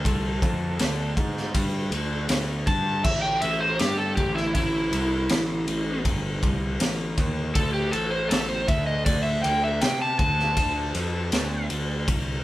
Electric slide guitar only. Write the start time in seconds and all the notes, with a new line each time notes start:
Already playing: A4
2.67 A5
3.04 E5
3.22 G5
3.41 E5
3.60 C5
3.79 G4
3.98 A4
4.16 G4
4.35 E4
4.55 E4
7.55 A4
7.73 G4
7.91 A4
8.10 C5
8.29 A4
8.49 C5
8.68 E5
8.87 D#5
9.05 D5
9.23 E5
9.43 G5
9.64 E5
9.81 G5
10.02 A5
10.19 A5